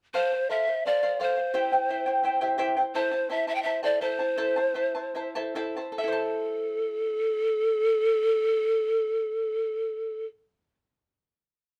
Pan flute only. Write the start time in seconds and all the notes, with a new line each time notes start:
0.14 C5
0.50 E5
0.86 D5
1.22 C5
2.95 C5
3.31 E5
3.48 E5
3.55 G5
3.62 E5
3.84 D5
4.02 C5
5.99 A4